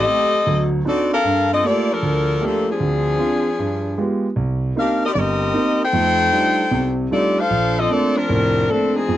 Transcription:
Already playing: C4 G4 A4 D#5
0.07 A3 C4 G4
0.47 D2 F#3
0.85 C4 D4 D#4 F#4 A4 D5
1.13 D4 A4 A#4 F5
1.25 G2
1.53 C4 F4 A4 D#5
1.63 A3 A#3 F4 G4 A4 D5
1.93 F3 D4 A4 A#4
2.03 D2
2.41 F3 A3 A#3 D4 F4 G4
2.45 A#3 A4
2.71 F3 C4 D4 G#4
2.80 D2
3.19 C4 D4 F4
3.59 G2
3.98 G#3 B3 F4 G4
4.36 C2
4.76 A#3 C4 D4 D#4 G4 A#4 F5
5.05 C4 G4 A#4 D#5
5.13 G1 D5
5.18 C4 G4 A#4 D#5
5.54 A#3 C4 D#4
5.84 D#4 A4 C5 G5
5.93 F2 A3
6.32 G3 A3 D4 D#4 F4
6.71 C2 C3
7.11 G3 A3 C4 D4 D#4 F4 G4 A4 D5
7.39 D4 A4 C5 F5
7.50 A#1
7.79 C4 F4 A4 D#5
7.89 A3 A#3 C4 D4 F4 A4 D5
8.17 F3 C4 D4 A#4
8.29 F1 A2
8.69 F3 A3 A#3 C4 D4 A4
8.96 F3 C4 D#4 G#4
9.08 F2 F3

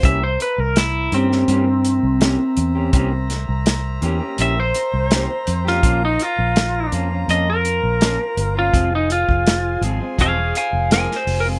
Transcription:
0.02 C2 E3 A#3 C#4 G4 A#4 C5 E5 A#5, kick, closed hi-hat
0.22 C5, muted clean electric guitar stroke
0.39 B4, muted clean electric guitar stroke, closed hi-hat
0.58 C2 A#4, muted clean electric guitar stroke
0.75 E4, muted clean electric guitar stroke, snare, closed hi-hat
1.11 G2 E3 A#3 C4 C#4 G4, closed hi-hat
1.30 A#3 C#4 G4, snare
1.48 G2 E3 A#3 C#4 G4, closed hi-hat
1.67 muted clean electric guitar stroke
1.84 muted clean electric guitar stroke, closed hi-hat
2.03 C2
2.20 E3 A#3 C#4 G4, snare, closed hi-hat
2.39 muted clean electric guitar stroke
2.57 E2, muted clean electric guitar stroke, closed hi-hat
2.75 A#3 C#4 G4
2.93 C2 E3 A#3 C#4 G4, kick, closed hi-hat
3.12 muted clean electric guitar stroke
3.29 muted clean electric guitar stroke, snare, closed hi-hat
3.48 C2, muted clean electric guitar stroke
3.66 muted clean electric guitar stroke, snare, closed hi-hat
4.01 E2 E3 A#3 C#4 G4, closed hi-hat
4.20 A#3 C#4 G4
4.38 A#1 E3 A#3 C#4 G4 E5, closed hi-hat
4.57 C5, muted clean electric guitar stroke
4.74 muted clean electric guitar stroke, closed hi-hat
4.94 C2
5.10 E3 A#3 C#4 G4, snare, closed hi-hat
5.29 muted clean electric guitar stroke
5.47 F2, muted clean electric guitar stroke, closed hi-hat
5.65 A#3 C#4 F4 G4, snare
5.83 A#1 F3 A#3 C#4 F4 F5, kick, closed hi-hat
6.02 D#4, muted clean electric guitar stroke
6.19 F4, muted clean electric guitar stroke, closed hi-hat
6.38 A#1, muted clean electric guitar stroke
6.56 snare, closed hi-hat
6.92 F2 F3 A#3 C#4 F4, closed hi-hat
7.11 A#3 C#4 F4
7.28 F2 F3 A#3 C#4 F4 D#5, closed hi-hat
7.47 A#4, muted clean electric guitar stroke
7.64 muted clean electric guitar stroke, closed hi-hat
7.84 A#1
8.00 F3 A#3 C#4 F4, snare, closed hi-hat
8.20 muted clean electric guitar stroke
8.37 G1, muted clean electric guitar stroke, closed hi-hat
8.55 A#3 C#4 F4
8.73 F1 F3 G#3 C4 F4 G#4 C5 G#5, kick, closed hi-hat
8.92 D#4, muted clean electric guitar stroke
9.09 F4, muted clean electric guitar stroke, closed hi-hat
9.28 F1, muted clean electric guitar stroke, kick
9.46 muted clean electric guitar stroke, snare, closed hi-hat
9.81 G#1 F3 G#3 C4 F4, closed hi-hat
10.00 G#3 C4 F4
10.18 E1 F3 G#3 C4 F4 G#4 F5, kick, closed hi-hat
10.37 muted clean electric guitar stroke
10.54 F5 G#5, muted clean electric guitar stroke, closed hi-hat
10.73 F1
10.90 F3 G#3 C4 F4 A#4, snare, closed hi-hat
10.94 G#5
11.09 muted clean electric guitar stroke, snare
11.16 C5
11.27 F1, muted clean electric guitar stroke, open hi-hat
11.40 A#4
11.46 G#3 C4 F4

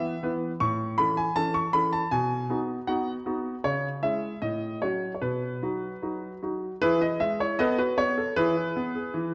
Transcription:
Already playing: E3 B3 B4 E5
0.23 E3 B3 B4
0.60 A2 C#6
0.98 E3 C#4 A4 B5
1.17 G#5
1.36 E3 C#4 A4 A5
1.54 C#6
1.73 E3 C#4 A4 B5
1.93 A5
2.11 B2 G#5
2.50 B3 D#4 F#4
2.87 B3 D#4 F#4 F#5
3.26 B3 D#4 F#4
3.64 C#3 C#5
4.03 G#3 C#4 E4 E5
4.42 A2 D#5
4.82 F#3 C#4 F#4 C#5
5.14 C#5
5.22 B2 B4
5.62 F#3 D#4 F#4
6.02 F#3 D#4 F#4
6.42 F#3 D#4 F#4
6.82 E3 E4 G#4 B4
7.01 E4 D#5
7.20 G#3 E5
7.40 E4 C#5
7.59 B3 A4 B4 D#5
7.78 F#4 B4
7.98 B3 C#5
8.18 A4
8.36 E3 E4 G#4 B4
8.57 E4
8.76 B3
8.95 G#4
9.14 E3

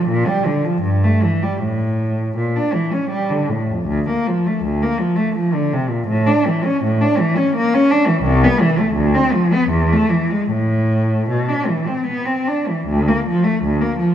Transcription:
0.09 A#2
0.26 G3
0.46 D3
0.65 F3
0.82 G2
1.04 A3
1.22 E3
1.43 G3
1.62 A2
2.37 A#2
2.56 D4
2.73 E3
2.92 C#4
3.10 G3
3.30 D3
3.49 A2
3.70 F2
3.87 D2
4.09 A#3
4.27 F3
4.46 A3
4.64 D2
4.83 A#3
4.98 F3
5.16 A3
5.35 F3
5.54 D3
5.73 C3
5.89 A#2
6.08 A2
6.27 D4
6.47 E3
6.65 C#4
6.84 A2
7.01 D4
7.19 E3
7.36 C#4
7.56 A#3
7.74 C#4
7.91 D4
8.07 E3
8.23 C2
8.44 B3
8.60 E3
8.79 A3
8.95 D2
9.14 C4
9.33 F3
9.53 B3
9.70 E2
9.93 A3
10.09 E3
10.30 G#3
10.51 A2
11.29 B2
11.49 D4
11.68 E3
11.87 C4
12.07 B3
12.25 C4
12.48 D4
12.68 E3
12.87 D2
13.08 A#3
13.27 F3
13.44 A3
13.65 D2
13.81 A#3
13.99 F3

